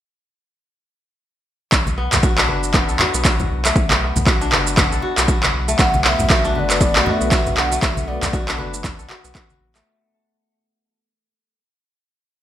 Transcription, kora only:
1.98 B3
2.23 F#4
2.38 D4
2.49 B4
2.74 B3
2.89 A4
2.99 F#4
3.14 B3
3.25 F#4
3.65 A3
4.01 B3
4.26 F#4
4.41 D4
4.52 B4
4.77 B3
4.92 A4
5.03 F#4
5.17 B3
5.28 F#4
5.68 A3
6.04 B3
6.30 F#4
6.44 D4
6.55 B4
6.81 B3
6.95 A4
7.06 F#4
7.21 B3
7.31 F#4
7.72 A3
8.08 B3
8.33 F#4
8.48 D4
8.59 B4
8.84 B3
8.99 A4
9.10 F#4
9.24 B3
9.35 F#4
9.75 A3

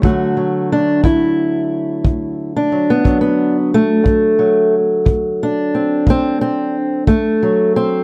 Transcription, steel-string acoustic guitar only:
0.02 D2 D3 F#3 A3 F#4
0.37 F#3
0.72 D4
1.03 D2 E4
2.04 D2
2.56 D4
2.72 F#3
2.90 B3
3.04 D2 F#3
3.21 B3
3.74 A3
4.04 D2
4.39 F#3
5.05 D2
5.43 D4
5.75 C4
6.07 D2 C4
6.41 C4
7.07 D2 A3
7.43 F#3
7.76 C4

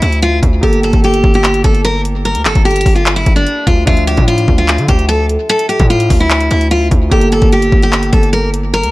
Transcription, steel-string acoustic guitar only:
0.02 E4
0.23 F4
0.63 G4
0.84 A4
1.04 G4
1.35 G4
1.64 A4
1.85 A#4
2.25 A#4
2.46 A4
2.65 G4
2.95 F4
3.16 E4
3.36 D4
3.67 F4
3.87 F4
4.07 G4
4.28 F4
4.58 F4
4.89 G4
5.09 A4
5.50 A4
5.69 G4
5.90 F4
6.20 E4
6.51 E4
6.71 F4
7.11 G4
7.32 A4
7.53 G4
7.83 G4
8.13 A4
8.33 A#4
8.74 A#4

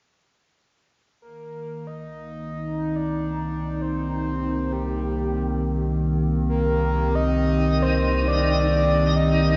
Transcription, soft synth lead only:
1.22 A#4
1.87 D#5
2.96 D5
3.82 C5
4.72 G4
6.49 A#4
7.15 D#5
7.82 C5
8.28 D5
9.16 D#5

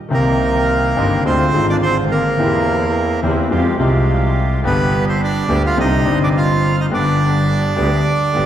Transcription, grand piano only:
0.09 C2 C3 D#3 A#3 C4 G4
0.96 G1 G2 D#3 A#3 C4 G4
1.25 D2 D3 G#3 C4 F4
1.53 G#1 G#2 D3 G#3 C4 F4
2.37 E2 E3 A#3 C4 G4
3.23 E2 E3 A#3 C4 G4
3.50 F2 F3 G#3 C4 G4
3.77 C2 C3 F3 G#3 C4
3.81 G4
4.62 G1 G2 D3 G3 B3 G4
5.49 D2 D3 G3 B3 G4
5.77 C2 C3 D3 G3 C4 D#4
6.03 G1 G2 G3 C4 D4
6.07 D#4
6.89 G1 G2 D3 G3 B3
6.94 G4
7.76 D2 D3 G3 B3 G4
8.33 G1 G2 D3 G3 B3 G4

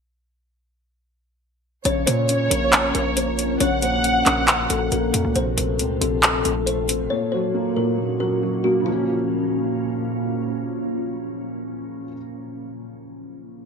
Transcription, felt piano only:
1.85 C#3
2.07 A#3
2.29 C#4
2.51 C#3
2.73 C#3
2.94 A#3
3.17 A#3
3.38 C#4
3.60 C#3
3.82 A#3
4.04 C#4
4.26 C#3
4.48 C#3
4.70 A#3
4.92 A#3
5.13 C#4
5.35 C3
5.58 A3
5.79 C4
6.01 C3
6.23 C3
6.45 A3
6.67 A3
6.89 C4
7.10 A#2
7.33 F#3
7.54 A#3
7.76 A#2
7.98 A#2
8.20 F#3
8.42 F#3
8.64 A#3
8.80 C#3 F3
8.88 A#3 C#4

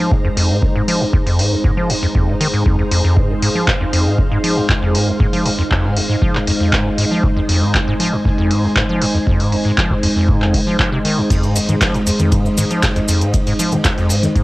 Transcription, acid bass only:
0.00 F3
0.12 F2
0.25 F2
0.37 F2
0.50 G#2
0.63 F2
0.76 G#2
0.88 F3
1.01 F2
1.13 F2
1.26 F2
1.39 G#2
1.52 F2
1.64 G#2
1.77 F3
1.90 F2
2.03 F2
2.15 F2
2.28 G#2
2.40 D#3
2.53 G#2
2.66 F2
2.79 F2
2.91 F2
3.04 F2
3.17 G#2
3.30 F2
3.42 G#2
3.55 F3
3.68 F2
3.81 F2
3.93 F2
4.06 G#2
4.18 F2
4.31 G#2
4.44 F3
4.57 F2
4.69 F2
4.82 F2
4.94 G#2
5.08 F2
5.20 G#2
5.33 F3
5.45 F2
5.59 F2
5.71 F2
5.84 G#2
5.96 F2
6.09 G#2
6.22 F3
6.35 F2
6.47 F2
6.60 F2
6.73 G#2
6.86 F2
6.98 G#2
7.11 F3
7.24 F2
7.37 F2
7.49 F2
7.62 G#2
7.74 F2
7.87 G#2
8.00 F3
8.13 F2
8.25 F2
8.38 F2
8.51 G#2
8.64 F2
8.76 G#2
8.89 F3
9.02 F2
9.15 F2
9.27 F2
9.40 G#2
9.52 F2
9.65 G#2
9.78 F3
9.91 F2
10.03 F2
10.16 F2
10.29 G#2
10.42 F2
10.54 F3
10.67 F3
10.92 C3
11.05 D#3
11.18 F2
11.30 F2
11.43 G#2
11.56 F2
11.69 G#2
11.81 F3
11.94 F2
12.07 F2
12.20 F2
12.32 G#2
12.45 F2
12.57 G#2
12.70 F3
12.83 F2
12.96 F2
13.08 F2
13.21 G#2
13.34 F2
13.47 G#2
13.59 F3
13.72 F2
13.85 F2
13.98 F2
14.10 G#2
14.23 F2
14.35 G#2

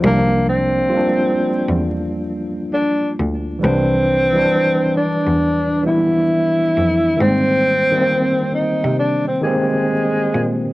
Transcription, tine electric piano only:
0.00 F3 G3 A#3
0.06 D4
0.90 G3 F4
0.94 A#3 D4
3.59 E3 G3 B4
3.65 D4
4.33 E3 G3 B4
4.38 D4
5.83 E3 G3 B3
5.89 E4
7.17 D#3 G3 A#3
7.22 C4
7.92 D#3 G3 A#3
7.97 C4
9.41 D#3 A#3 G4
9.47 C4

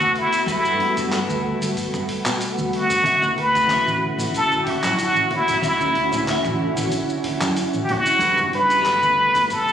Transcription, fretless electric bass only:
0.00 D2
0.47 G2
0.79 G2
1.29 D2
1.61 G1
2.26 B2
2.58 D2
3.05 D2
3.36 D2
3.86 A1
4.18 A1
4.83 F#2
5.15 A1
5.63 D2
5.95 D2
6.45 A1
6.76 A1
7.41 F#2
7.74 A1
8.21 G2
8.53 G2
9.03 D2
9.36 G1

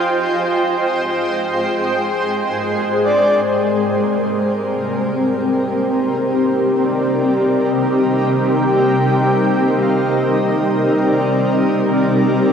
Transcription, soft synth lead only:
3.04 D5
3.45 C5
4.31 A#4
5.15 G4
6.44 C5
6.84 D5
7.71 D#5
8.54 G5
9.82 F5
10.23 D#5
11.07 D5
11.52 D#5
11.93 D5

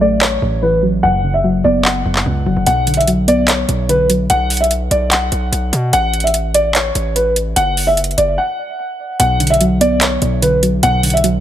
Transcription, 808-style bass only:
Already playing: A1
0.42 A1
1.03 F#1
1.65 F#1
2.05 F#1
2.26 C#2
2.46 F#1
2.56 F#1
2.67 B1
3.69 B1
4.30 B1
4.91 B1
5.32 B1
5.52 B1
5.73 B2
5.93 A1
6.95 A1
7.56 F#1
8.18 F#1
9.20 B1
10.22 B1
10.83 B1

